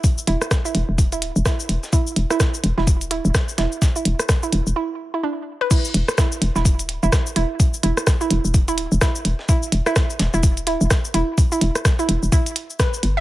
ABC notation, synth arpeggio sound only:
X:1
M:4/4
L:1/16
Q:"Swing 16ths" 1/4=127
K:Em
V:1 name="Synth arpeggio sound"
z2 E z2 E z3 E z2 E z3 | E z2 E z3 E z2 E z3 E z | z E z3 E z2 E z2 E D z2 B | E z3 E z2 E z3 E z2 E z |
z2 E z2 E z3 E z2 E z3 | E z2 E z3 E z2 E z3 E z | z E z3 E z2 E z3 B z2 e |]